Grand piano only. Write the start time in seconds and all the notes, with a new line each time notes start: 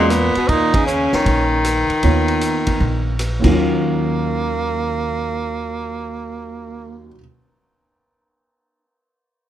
2.03 B3 F4 A#4 C#5
3.39 D#2 D#3
3.45 F#3 C#4
3.51 F4